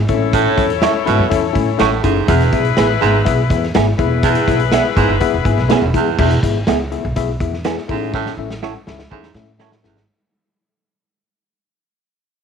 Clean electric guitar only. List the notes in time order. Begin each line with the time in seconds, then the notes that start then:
0.83 E4 A4 C#5
1.80 E4 A4 C#5
2.78 B3 E4 G#4
3.75 B3 E4 G#4
4.73 B3 E4 G#4
5.71 B3 E4 G#4
6.68 B3 E4 G#4
7.65 B3 E4 G#4
8.63 E4 A4 C#5
9.60 E4 A4 C#5